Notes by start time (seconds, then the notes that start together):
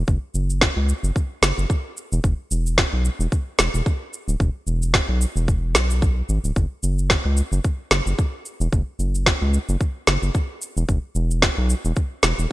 0.07 F#1, kick, shaker
0.34 F#1, shaker
0.50 shaker
0.61 kick, snare, shaker
0.76 C#2
0.89 shaker
1.03 F#1, shaker
1.16 kick, shaker
1.42 F#1, snare, shaker
1.58 F#1, shaker
1.70 kick, shaker
1.97 shaker
2.12 E1, shaker
2.24 E1, kick, shaker
2.51 E1, shaker
2.66 shaker
2.78 kick, snare, shaker
2.93 B1
3.05 shaker
3.19 E1, shaker
3.32 kick, shaker
3.59 E1, snare, shaker
3.74 E1, shaker
3.86 kick, shaker
4.13 shaker
4.28 D1, shaker
4.40 E1, kick, shaker
4.67 E1, shaker
4.82 shaker
4.94 kick, snare, shaker
5.09 B1
5.21 shaker
5.36 E1, shaker
5.48 kick, shaker
5.74 B1, snare, shaker
5.90 shaker
6.02 kick, shaker
6.29 G#1, shaker
6.44 D1, shaker
6.56 F#1, kick, shaker
6.83 F#1, shaker
6.99 shaker
7.10 kick, snare, shaker
7.25 C#2
7.37 shaker
7.52 F#1, shaker
7.64 kick, shaker
7.91 F#1, snare, shaker
8.06 F#1, shaker
8.19 kick, shaker
8.46 shaker
8.60 E1, shaker
8.72 F#1, kick, shaker
8.99 F#1, shaker
9.15 shaker
9.26 kick, snare, shaker
9.42 C#2
9.54 shaker
9.69 F#1, shaker
9.81 kick, shaker
10.07 F#1, snare, shaker
10.22 F#1, shaker
10.35 kick, shaker
10.62 shaker
10.77 E1, shaker
10.89 E1, kick, shaker
11.15 E1, shaker
11.31 shaker
11.42 kick, snare, shaker
11.58 B1
11.70 shaker
11.85 E1, shaker
11.96 kick, shaker
12.23 E1, snare, shaker
12.38 E1, shaker